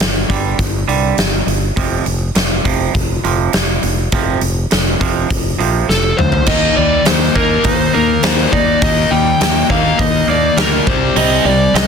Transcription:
0.00 fingered electric bass G1, clean electric guitar G2 D3, snare, open hi-hat
0.29 fingered electric bass G1, clean electric guitar G2 D3 G3, kick, open hi-hat
0.59 fingered electric bass G1, clean electric guitar G2 D3, kick, open hi-hat
0.88 fingered electric bass C2, clean electric guitar G2 D3 G3, open hi-hat
1.17 fingered electric bass G1, clean electric guitar G2 D3, snare, open hi-hat
1.47 fingered electric bass G1, clean electric guitar G2 D3, open hi-hat
1.76 fingered electric bass F1, clean electric guitar F2 C3 F3, kick, open hi-hat
2.06 fingered electric bass F1, clean electric guitar F2 C3, open hi-hat
2.35 fingered electric bass F1, clean electric guitar F2 C3, snare, open hi-hat
2.65 fingered electric bass F1, clean electric guitar F2 C3 F3, kick, open hi-hat
2.94 fingered electric bass F1, kick, open hi-hat
3.24 fingered electric bass F1, clean electric guitar F2 C3 F3, open hi-hat
3.53 fingered electric bass F1, clean electric guitar F2 C3, snare, open hi-hat
3.83 fingered electric bass F1, clean electric guitar F2 C3, open hi-hat
4.12 fingered electric bass F1, clean electric guitar F2 C3 F3, kick, open hi-hat
4.41 fingered electric bass F1, clean electric guitar F2 C3, open hi-hat
4.71 fingered electric bass F1, clean electric guitar F2 C3, snare, open hi-hat
5.00 fingered electric bass F1, clean electric guitar F2 C3 F3, kick, open hi-hat
5.29 fingered electric bass F1, clean electric guitar F2 C3, kick, open hi-hat
5.58 fingered electric bass A#1, clean electric guitar F2 C3 F3, open hi-hat
5.88 fingered electric bass F1, clean electric guitar F2 C3, lead electric guitar A4, snare
6.17 fingered electric bass D2, clean electric guitar F2 C3, lead electric guitar C5, mid tom
6.32 floor tom
6.46 fingered electric bass D#2, clean electric guitar D#3, distorted electric guitar D#3 A#3 D#4, lead electric guitar D#5, kick, crash
6.77 fingered electric bass D#2, distorted electric guitar D#3 A#3, clean electric guitar G3, lead electric guitar D5
7.05 fingered electric bass D#2, clean electric guitar D#3, distorted electric guitar D#3 A#3, lead electric guitar C5, snare, open hi-hat
7.35 fingered electric bass D#2, distorted electric guitar D#3 A#3 D#4, clean electric guitar A#3, lead electric guitar A#4, kick
7.64 fingered electric bass D#2, distorted electric guitar D#3 A#3, clean electric guitar D#4, lead electric guitar C5, kick, open hi-hat
7.93 fingered electric bass D#2, distorted electric guitar D#3 A#3, clean electric guitar A#3, lead electric guitar A#4
8.23 fingered electric bass D#2, distorted electric guitar D#3 A#3 D#4, clean electric guitar G3, lead electric guitar C5, snare, open hi-hat
8.52 fingered electric bass D#2, distorted electric guitar D#3 A#3, clean electric guitar D#4, lead electric guitar D5, kick
8.82 fingered electric bass D#2, clean electric guitar D#3, distorted electric guitar D#3 A#3 D#4, lead electric guitar D#5, kick, open hi-hat
9.11 fingered electric bass D#2, distorted electric guitar D#3 A#3, clean electric guitar G3, lead electric guitar G5
9.40 fingered electric bass D#2, distorted electric guitar D#3 A#3, clean electric guitar D#3, snare, open hi-hat
9.69 fingered electric bass D#2, distorted electric guitar D#3 A#3 D#4, clean electric guitar A#3, lead electric guitar F5, kick
9.99 fingered electric bass D#2, distorted electric guitar D#3 A#3, clean electric guitar D#4, lead electric guitar D#5, kick, open hi-hat
10.27 fingered electric bass D#2, clean electric guitar A#3, lead electric guitar D5
10.31 distorted electric guitar D#3 A#3
10.57 fingered electric bass D2, distorted electric guitar D#3 A#3 D#4, clean electric guitar G3, lead electric guitar A#4, snare, open hi-hat
10.87 fingered electric bass C2, clean electric guitar C3, distorted electric guitar C3 G3 C4, lead electric guitar C5, kick
11.16 fingered electric bass C2, clean electric guitar C3, distorted electric guitar C3 G3 C4, lead electric guitar D#5, open hi-hat
11.45 fingered electric bass C2, distorted electric guitar C3 G3, clean electric guitar G3, lead electric guitar D5
11.74 fingered electric bass C2, clean electric guitar C3, distorted electric guitar C3 G3, lead electric guitar D#5, snare, open hi-hat

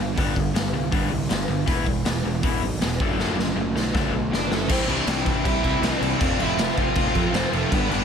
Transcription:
Already playing: distorted electric guitar G2 D3
0.00 picked electric bass G1, overdriven electric guitar G3 B3
0.15 picked electric bass G1, distorted electric guitar G2 D3 G3, overdriven electric guitar G3 B3, kick, open hi-hat
0.19 overdriven electric guitar D4
0.34 picked electric bass G1, distorted electric guitar G2 D3, overdriven electric guitar G3 B3, kick
0.54 picked electric bass G1, distorted electric guitar G2 D3, overdriven electric guitar G3 B3, snare, open hi-hat
0.73 picked electric bass C2, distorted electric guitar G2 D3, overdriven electric guitar G3 B3
0.91 picked electric bass G1, distorted electric guitar G2 D3 G3, overdriven electric guitar G3 B3 D4, kick, open hi-hat
1.11 picked electric bass C2, distorted electric guitar G2 D3, overdriven electric guitar G3 B3
1.29 picked electric bass G1, distorted electric guitar G2 D3, overdriven electric guitar G3 B3, snare, open hi-hat
1.48 picked electric bass G1, distorted electric guitar G2 D3, overdriven electric guitar G3 B3
1.66 picked electric bass E1, distorted electric guitar E2 B2 E3, overdriven electric guitar E3 B3 E4, kick, open hi-hat
1.86 picked electric bass E1, distorted electric guitar E2 B2, overdriven electric guitar E3 B3, kick
2.04 picked electric bass E1, distorted electric guitar E2 B2, overdriven electric guitar E3 B3, snare, open hi-hat
2.23 picked electric bass E1, distorted electric guitar E2 B2, overdriven electric guitar E3 B3
2.42 picked electric bass E1, distorted electric guitar E2 B2 E3, overdriven electric guitar E3 B3 E4, kick, open hi-hat
2.61 picked electric bass B1, distorted electric guitar E2 B2, overdriven electric guitar E3 B3
2.81 picked electric bass E1, distorted electric guitar E2 B2, overdriven electric guitar E3 B3, snare, open hi-hat
3.00 picked electric bass F#1, distorted electric guitar D3 A3 D4, overdriven electric guitar F#3 A3 D4, kick
3.18 picked electric bass F#1, distorted electric guitar D3 A3 D4, overdriven electric guitar F#3 A3 D4, snare
3.37 picked electric bass F#1, distorted electric guitar D3 A3, overdriven electric guitar F#3 A3, snare
3.55 picked electric bass F#1, distorted electric guitar D3 A3, overdriven electric guitar F#3 A3
3.75 picked electric bass B1, distorted electric guitar D3 A3, overdriven electric guitar F#3 A3, snare
3.94 picked electric bass F#1, distorted electric guitar D3 A3 D4, overdriven electric guitar F#3 A3 D4, kick, snare
4.12 picked electric bass B1, distorted electric guitar D3 A3, overdriven electric guitar F#3 A3
4.31 picked electric bass F#1, distorted electric guitar D3 A3, overdriven electric guitar F#3 A3, lead electric guitar D4 D5, snare
4.49 picked electric bass F#1, distorted electric guitar D3 A3, overdriven electric guitar F#3 A3, lead electric guitar A4, snare
4.53 lead electric guitar A3
4.68 picked electric bass C2, distorted electric guitar C3 G3 C4, overdriven electric guitar C3 E3 G3 C4 E4, lead electric guitar C4 C5, kick, crash
4.86 picked electric bass C2, distorted electric guitar C3 G3 C4, overdriven electric guitar C3 E3, lead electric guitar D4 D5, crash
4.90 overdriven electric guitar G3 C4 E4
5.06 picked electric bass C2, distorted electric guitar C3 G3 C4, overdriven electric guitar C3 E3 G3 C4, snare, crash
5.10 overdriven electric guitar E4
5.23 distorted electric guitar C3 G3 C4, overdriven electric guitar C3 E3 G3 C4, kick, crash
5.27 overdriven electric guitar E4
5.43 picked electric bass C2, distorted electric guitar C3 G3 C4, overdriven electric guitar C3 E3 G3 C4 E4, lead electric guitar E5, kick, crash
5.47 lead electric guitar E4
5.62 picked electric bass C2, distorted electric guitar C3 G3 C4, overdriven electric guitar C3 E3 G3 C4 E4, kick, crash
5.81 picked electric bass C2, distorted electric guitar C3 G3 C4, overdriven electric guitar C3 E3 G3 C4 E4, lead electric guitar D4 D5, snare, crash
6.00 picked electric bass C2, distorted electric guitar C3 G3 C4, overdriven electric guitar C3 E3 G3 C4 E4, crash
6.20 picked electric bass F1, distorted electric guitar F2 C3 F3, overdriven electric guitar F3 A3 C4 F4, lead electric guitar D4 D5, kick, crash
6.38 picked electric bass F1, distorted electric guitar F2 C3 F3, overdriven electric guitar F3 A3 C4 F4, lead electric guitar E5, crash
6.42 lead electric guitar E4
6.57 picked electric bass F1, distorted electric guitar F2 C3 F3, overdriven electric guitar F3 A3 C4 F4, snare, crash
6.75 picked electric bass F1, distorted electric guitar F2 C3 F3, overdriven electric guitar F3 A3 C4 F4, lead electric guitar F4 F5, kick, crash
6.94 picked electric bass F1, distorted electric guitar F2 C3 F3, overdriven electric guitar F3 A3 C4, kick, crash
6.99 overdriven electric guitar F4
7.14 distorted electric guitar F2 C3 F3, picked electric bass F2, overdriven electric guitar F3 A3 C4 F4, kick, crash
7.33 picked electric bass F1, distorted electric guitar F2 C3 F3, overdriven electric guitar F3 A3 C4 F4, lead electric guitar C4 C5, snare, crash
7.51 picked electric bass F1, distorted electric guitar F2 C3 F3, overdriven electric guitar F3 A3 C4 F4, lead electric guitar A3 A4, crash
7.70 picked electric bass G1, distorted electric guitar G2 D3 G3, overdriven electric guitar G2 D3 G3 B3 D4, lead electric guitar B3 B4, kick, crash
7.88 picked electric bass G1, distorted electric guitar G2 D3 G3, overdriven electric guitar G2 D3 G3 B3 D4, lead electric guitar D4 D5, crash

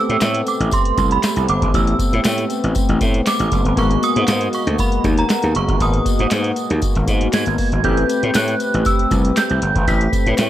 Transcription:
Already playing: analog polysynth A3 B3 C4 G4, synth bell E6
0.09 slap bass A2, closed hi-hat
0.21 slap bass A2, snare, clap, closed hi-hat, tambourine
0.34 closed hi-hat
0.47 synth bell D6, closed hi-hat, tambourine
0.60 slap bass A1, closed hi-hat
0.71 synth bell C6, kick, closed hi-hat, tambourine
0.85 closed hi-hat
0.97 slap bass C2, kick, closed hi-hat, tambourine
1.11 synth bell B5, closed hi-hat
1.23 snare, clap, closed hi-hat, tambourine
1.36 slap bass C2, closed hi-hat
1.48 slap bass G1, synth bell D6, closed hi-hat
1.62 slap bass G#1, kick, closed hi-hat
1.74 slap bass A1, synth bell E6, kick, closed hi-hat, tambourine
1.87 closed hi-hat
1.99 kick, closed hi-hat, tambourine
2.13 slap bass A2, closed hi-hat
2.24 slap bass A2, snare, clap, closed hi-hat, tambourine
2.38 closed hi-hat
2.50 closed hi-hat, tambourine
2.64 slap bass A1, closed hi-hat
2.75 kick, closed hi-hat, tambourine
2.89 slap bass A1, closed hi-hat
3.01 slap bass A2, kick, closed hi-hat, tambourine
3.14 closed hi-hat
3.26 synth bell D6, snare, clap, closed hi-hat, tambourine
3.39 slap bass A1, closed hi-hat
3.51 slap bass F#1, kick, closed hi-hat, tambourine
3.65 slap bass G1, closed hi-hat
3.76 slap bass G#1, analog polysynth G#3 A#3 B3 F#4, synth bell C#6, kick, closed hi-hat, tambourine
3.91 closed hi-hat
4.03 synth bell D#6, closed hi-hat, tambourine
4.16 slap bass G#2, closed hi-hat
4.28 slap bass G#2, snare, clap, closed hi-hat, tambourine
4.41 closed hi-hat
4.53 synth bell C#6, closed hi-hat, tambourine
4.67 slap bass D2, closed hi-hat
4.78 synth bell B5, kick, closed hi-hat, tambourine
4.92 closed hi-hat
5.04 slap bass D#2, kick, closed hi-hat, tambourine
5.18 synth bell A#5, closed hi-hat
5.29 snare, clap, closed hi-hat, tambourine
5.43 slap bass D#2, closed hi-hat
5.55 slap bass F#1, synth bell C#6, closed hi-hat
5.68 slap bass G1, kick, closed hi-hat
5.80 slap bass G#1, synth bell D#6, kick, closed hi-hat, tambourine
5.94 closed hi-hat
6.06 kick, closed hi-hat, tambourine
6.19 slap bass G#2, closed hi-hat
6.31 slap bass G#2, snare, clap, closed hi-hat, tambourine
6.44 closed hi-hat
6.56 closed hi-hat, tambourine
6.70 slap bass D#2, closed hi-hat
6.82 kick, closed hi-hat, tambourine
6.95 slap bass G#1, closed hi-hat
7.08 slap bass G#2, kick, closed hi-hat, tambourine
7.21 closed hi-hat
7.33 slap bass G#2, synth bell G#6, snare, clap, closed hi-hat, tambourine
7.46 slap bass G#1, closed hi-hat
7.58 kick, open hi-hat, tambourine
7.72 slap bass G#1, closed hi-hat
7.83 slap bass A1, analog polysynth A3 C4 G4 B4, synth bell G6, kick, closed hi-hat
7.97 closed hi-hat
8.09 closed hi-hat, tambourine
8.23 slap bass A2, closed hi-hat
8.34 slap bass A2, synth bell F#6, snare, clap, closed hi-hat, tambourine
8.48 closed hi-hat
8.60 closed hi-hat, tambourine
8.74 slap bass A1, closed hi-hat
8.85 synth bell E6, kick, closed hi-hat, tambourine
8.99 closed hi-hat
9.11 slap bass C2, kick, closed hi-hat, tambourine
9.25 closed hi-hat
9.37 synth bell G6, snare, clap, closed hi-hat, tambourine
9.50 slap bass C2, closed hi-hat
9.62 slap bass G1, closed hi-hat
9.75 slap bass G#1, kick, closed hi-hat
9.87 slap bass A1, synth bell B6, kick, closed hi-hat, tambourine
10.01 closed hi-hat
10.13 kick, closed hi-hat, tambourine
10.26 slap bass A2, closed hi-hat
10.38 slap bass A2, snare, clap, closed hi-hat, tambourine

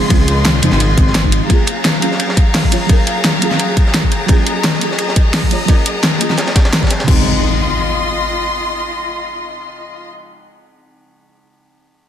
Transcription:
Already playing: synth stab C3 C#3 F3 G#3 C4 D#4 G#4, string section F4 D#5 C6
0.07 detuned saw bass C#2, synth stab C#3 F3 G#3, kick, closed hi-hat, ride
0.12 synth stab C4 F4
0.28 closed hi-hat, ride
0.45 detuned saw bass C#2, snare, closed hi-hat, ride
0.54 snare
0.61 detuned saw bass F2, synth stab C#3 F3 G#3 C4 D#4, closed hi-hat, ride
0.72 detuned saw bass G#1, snare
0.80 closed hi-hat, ride
0.96 synth stab C#3 F3 G#3 C4 D#4, kick, closed hi-hat, ride
1.07 snare
1.15 snare, closed hi-hat, ride
1.23 synth stab C#3 F3 G#3 C4 D#4, kick
1.32 closed hi-hat, ride
1.47 synth stab F#3 A#3 C#4, string section F#3 G#4 F5 A#5, kick, closed hi-hat, ride
1.51 synth stab F4 G#4
1.67 closed hi-hat, ride
1.85 snare, closed hi-hat, ride
1.93 snare
1.99 synth stab F#3 A#3 C#4, closed hi-hat, ride
2.04 synth stab F4 G#4
2.11 snare
2.19 closed hi-hat, ride
2.29 snare
2.37 kick, closed hi-hat, ride
2.55 snare, closed hi-hat, open hi-hat
2.63 kick, snare
2.70 synth stab F#3 A#3 C#4 F4 C#5, closed hi-hat, ride
2.86 synth stab F#3 A#3 C#4, kick, closed hi-hat, ride
2.91 synth stab F4 A#4
3.07 closed hi-hat, ride
3.24 snare, closed hi-hat, ride
3.34 snare
3.39 synth stab F#3 A#3 C#4, closed hi-hat, ride
3.43 synth stab F4 G#4
3.51 snare
3.59 closed hi-hat, ride
3.77 kick, closed hi-hat, ride
3.86 snare
3.94 snare, closed hi-hat, ride
4.03 kick
4.12 closed hi-hat, ride
4.26 synth stab F#3 A#3 C#4, string section D#5, kick, closed hi-hat, ride
4.31 synth stab F4 G#4
4.46 closed hi-hat, ride
4.64 snare, closed hi-hat, ride
4.74 snare
4.79 synth stab F#3 A#3 C#4, closed hi-hat, ride
4.83 synth stab F4 G#4
4.91 snare
4.98 closed hi-hat, ride
5.08 snare
5.16 kick, closed hi-hat, ride
5.34 snare, closed hi-hat, open hi-hat
5.43 kick, snare
5.50 synth stab F#3 A#3 C#4 F4 C#5, closed hi-hat
5.66 synth stab F#3 A#3 C#4, kick, closed hi-hat, ride
5.70 synth stab F4 A#4
5.86 closed hi-hat, ride
6.03 snare, closed hi-hat, ride
6.13 snare
6.18 synth stab F#3 A#3 C#4, closed hi-hat, ride
6.22 synth stab F4 G#4
6.30 snare
6.37 snare, closed hi-hat, ride
6.47 snare, ride
6.56 kick, snare, closed hi-hat, ride
6.65 snare, ride
6.73 snare, closed hi-hat, ride
6.82 kick, snare, ride
6.86 snare, ride
6.91 snare, closed hi-hat, ride
6.99 synth stab C#3, snare, ride
7.06 synth stab F3 G#3, string section F4 D#5 C6, kick, crash, impact
7.10 synth stab C4 D#4

